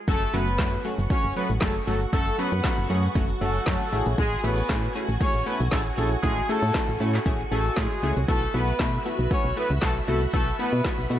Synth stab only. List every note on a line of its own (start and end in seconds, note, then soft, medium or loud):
0.08 0.23 F#3 loud
0.08 0.23 A3 medium
0.08 0.23 C#4 medium
0.08 0.24 F#4 loud
0.33 0.49 F#3 medium
0.33 0.49 A3 medium
0.33 0.49 C#4 medium
0.33 0.49 F#4 medium
0.59 0.74 F#3 loud
0.59 0.75 A3 medium
0.59 0.75 C#4 medium
0.59 0.75 F#4 loud
0.85 1.00 F#3 medium
0.85 1.00 A3 medium
0.85 1.00 C#4 medium
0.85 1.00 F#4 medium
1.10 1.26 F#3 medium
1.10 1.26 A3 medium
1.10 1.26 C#4 medium
1.10 1.26 F#4 medium
1.36 1.52 F#3 medium
1.36 1.52 A3 medium
1.36 1.52 C#4 medium
1.36 1.52 F#4 medium
1.62 1.77 F#3 loud
1.62 1.77 A3 medium
1.62 1.77 C#4 loud
1.62 1.77 G#4 loud
1.87 2.03 F#3 medium
1.87 2.03 A3 medium
1.87 2.03 C#4 medium
1.87 2.03 F#4 medium
2.13 2.28 F#3 loud
2.13 2.28 A3 medium
2.13 2.28 C#4 loud
2.13 2.29 F#4 loud
2.38 2.54 F#3 medium
2.38 2.54 A3 medium
2.38 2.54 C#4 medium
2.38 2.54 F#4 medium
2.64 2.80 F#3 loud
2.64 2.80 A3 medium
2.64 2.80 C#4 medium
2.64 2.80 F#4 loud
2.90 3.05 F#3 medium
2.90 3.05 A3 medium
2.90 3.06 C#4 medium
2.90 3.06 G#4 medium
3.16 3.31 F#3 loud
3.16 3.31 A3 medium
3.16 3.31 C#4 medium
3.16 3.31 F#4 loud
3.41 3.57 F#3 medium
3.41 3.57 A3 medium
3.41 3.57 C#4 medium
3.41 3.57 F#4 medium
3.67 3.82 F#3 loud
3.67 3.82 A3 medium
3.67 3.82 C#4 medium
3.67 3.82 F#4 loud
3.92 4.34 A3 medium
3.92 4.34 C#4 medium
3.92 4.34 E4 medium
3.92 4.34 G#4 loud
4.44 4.59 A3 medium
4.44 4.59 C#4 medium
4.44 4.59 E4 medium
4.44 4.59 G#4 medium
4.70 4.85 A3 loud
4.70 4.85 C#4 medium
4.70 4.85 E4 medium
4.70 4.85 G#4 loud
4.95 5.11 A3 medium
4.95 5.11 C#4 medium
4.95 5.11 E4 medium
4.95 5.11 G#4 medium
5.21 5.36 A3 medium
5.21 5.36 C#4 medium
5.21 5.36 E4 medium
5.21 5.36 G#4 medium
5.46 5.62 A3 medium
5.46 5.62 C#4 medium
5.46 5.62 E4 medium
5.46 5.62 A4 medium
5.72 5.87 A3 loud
5.72 5.88 C#4 medium
5.72 5.88 E4 medium
5.72 5.88 G#4 loud
5.98 6.13 A3 medium
5.98 6.13 C#4 medium
5.98 6.13 E4 medium
5.98 6.13 G#4 medium
6.23 6.39 A3 loud
6.23 6.39 C#4 medium
6.23 6.39 E4 loud
6.23 6.39 F#4 loud
6.49 6.64 A3 medium
6.49 6.65 C#4 medium
6.49 6.65 E4 medium
6.49 6.65 G#4 medium
6.75 6.90 A3 loud
6.75 6.90 C#4 medium
6.75 6.90 E4 medium
6.75 6.90 F#4 loud
7.00 7.16 A3 medium
7.00 7.16 C#4 medium
7.00 7.16 E4 medium
7.00 7.16 A4 medium
7.26 7.41 A3 medium
7.26 7.41 C#4 medium
7.26 7.41 E4 medium
7.26 7.41 G#4 loud
7.51 7.67 A3 medium
7.51 7.67 C#4 medium
7.51 7.67 E4 medium
7.51 7.67 G#4 medium
7.77 7.93 A3 loud
7.77 7.93 C#4 loud
7.77 7.93 E4 medium
7.77 7.93 G#4 loud
8.03 8.18 A3 medium
8.03 8.18 C#4 medium
8.03 8.18 E4 medium
8.03 8.19 G#4 medium
8.28 8.44 A3 loud
8.28 8.44 B3 loud
8.28 8.44 E4 medium
8.28 8.44 F#4 loud
8.54 8.69 A3 medium
8.54 8.69 B3 medium
8.54 8.70 E4 medium
8.54 8.70 F#4 medium
8.80 8.95 A3 loud
8.80 8.95 B3 medium
8.80 8.95 E4 medium
8.80 8.95 F#4 loud
9.05 9.21 A3 medium
9.05 9.21 B3 medium
9.05 9.21 E4 medium
9.05 9.21 F#4 medium
9.31 9.46 A3 medium
9.31 9.46 B3 medium
9.31 9.47 E4 medium
9.31 9.47 F#4 medium
9.57 9.72 A3 medium
9.57 9.72 B3 medium
9.57 9.72 E4 medium
9.57 9.72 F#4 medium
9.82 9.98 A3 loud
9.82 9.98 B3 medium
9.82 9.98 E4 medium
9.82 9.98 F#4 loud
10.08 10.23 A3 medium
10.08 10.23 B3 medium
10.08 10.23 E4 medium
10.08 10.23 F#4 medium
10.33 10.49 A3 loud
10.33 10.49 B3 medium
10.33 10.49 E4 medium
10.33 10.49 F#4 loud
10.59 10.74 A3 medium
10.59 10.75 B3 medium
10.59 10.75 E4 medium
10.59 10.75 F#4 medium
10.85 11.00 A3 loud
10.85 11.00 B3 medium
10.85 11.00 E4 medium
10.85 11.00 F#4 loud
11.10 11.19 A3 medium
11.10 11.19 B3 medium
11.10 11.19 E4 medium
11.10 11.19 F#4 medium